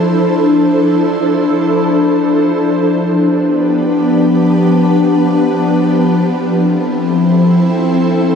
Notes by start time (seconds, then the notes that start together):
Already playing: F3 D4 E4 A4 C5
2.91 F3 B3 D4 G4 B4
6.22 C4 E4 A4 C5